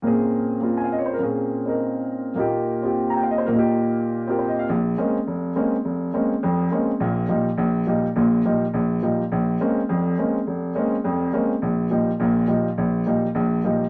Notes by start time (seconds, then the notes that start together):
0.02 A#2 A#3 C4 C#4
0.07 G#4
0.61 A#3 C4 F4
0.77 G#5
0.84 F5
0.92 D#5
0.98 C#5
1.06 C5
1.13 A#4
1.18 A#2 A#3 C4 C#4
1.23 G#4
1.66 C4 D#4 A#4
2.34 A#2 A#3 D#4
2.38 F4 G4
2.82 C4 F4 G4
3.10 A#5
3.16 G5
3.23 F5
3.31 D#5
3.38 C5
3.46 A#2 A#4
3.50 A#3 D#4
3.56 F4 G4
4.27 C4 F4 G4 A#4
4.39 C5
4.49 D#5
4.59 F5
4.69 A#1
4.98 G#3 A#3 C4 C#4
5.27 F1
5.56 G#3 A#3 C4 C#4
5.85 F1
6.14 G#3 A#3 C4 C#4
6.43 F1 F2
6.71 G#3 A#3 C4 C#4
7.00 A#1 A#2
7.29 A#2 F3 G3 D#4
7.58 A#1
7.87 A#2 F3 G3 D#4
8.16 A#1 A#2
8.45 A#2 F3 G3 D#4
8.74 A#1
9.02 A#2 F3 G3 D#4
9.32 A#1
9.60 G#3 A#3 C4 C#4
9.89 F1 F2
10.18 G#3 A#3 C4 C#4
10.47 F1
10.75 G#3 A#3 C4 C#4
11.04 F1 F2
11.33 G#3 A#3 C4 C#4
11.62 A#1
11.90 A#2 F3 G3 D#4
12.20 A#1 A#2
12.47 A#2 F3 G3 D#4
12.78 A#1
13.06 A#2 F3 G3 D#4
13.35 A#1
13.64 A#2 F3 G3 D#4